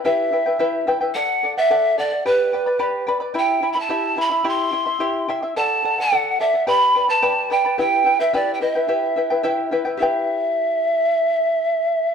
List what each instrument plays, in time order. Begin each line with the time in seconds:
0.05 charango E4 G4 B4 E5 G5, pan flute E5
0.32 charango E4 B4 E5 G5
0.46 charango E4 B4 G5
0.59 charango E4 G4 B4 E5 G5
0.87 charango E4 B4 E5 G5
1.01 charango E4 B4 G5
1.14 charango A4 D5 F#5, pan flute F#5
1.43 charango A4 D5 F#5
1.57 charango D5 F#5, pan flute E5
1.70 charango A4 D5 F#5
1.98 charango A4 D5 F#5, pan flute D5
2.12 charango D5 F#5
2.25 charango G4 B4 D5 G5 B5, pan flute B4
2.53 charango B4 D5 G5 B5
2.66 charango B4 D5 B5
2.79 charango G4 B4 D5 G5 B5
3.07 charango B4 D5 G5 B5
3.20 charango B4 D5 B5
3.34 charango E4 G4 E5 G5 B5
3.38 pan flute G5
3.62 charango E4 E5 G5 B5
3.73 charango E5 B5, pan flute B5
3.77 charango E4, pan flute A5
3.89 charango E4 G4 E5 G5 B5
4.17 charango E4 E5 G5 B5, pan flute B5
4.30 charango E4 E5 B5
4.44 charango E4 G4 E5 G5 C6
4.49 pan flute C6
4.72 charango E4 E5 G5 C6
4.86 charango E4 E5 C6
5.00 charango E4 G4 E5 G5 C6
5.28 charango E4 E5 G5 C6
5.42 charango E4 E5 C6
5.56 charango A4 D5 F#5, pan flute A5
5.84 charango A4 D5 F#5
5.98 charango D5 F#5, pan flute F#5
6.12 charango A4 D5 F#5
6.40 charango A4 D5 F#5, pan flute E5
6.54 charango D5 F#5
6.67 charango G4 B4 D5 G5 B5, pan flute B5
6.95 charango B4 D5 G5 B5
7.08 charango B4 D5 B5, pan flute A5
7.22 charango G4 B4 D5 G5 B5
7.50 charango B4 D5 G5 B5, pan flute G5
7.65 charango B4 D5 B5
7.78 charango E4 G4 B4 E5 G5, pan flute G5
8.05 charango E4 B4 E5 G5
8.20 charango E4 B4 G5, pan flute E5
8.33 charango E4 G4 B4 E5 G5, pan flute D5
8.54 pan flute G5
8.61 charango E4 B4 E5 G5, pan flute D#5
8.75 charango E4 B4 G5, pan flute E5
8.88 charango E4 G4 B4 E5 G5
9.16 charango E4 B4 E5 G5
9.30 charango E4 B4 G5
9.43 charango E4 G4 B4 E5 G5
9.71 charango E4 B4 E5 G5
9.85 charango E4 B4 G5
9.97 charango E4 G4 E5, pan flute E5
10.01 charango B4 G5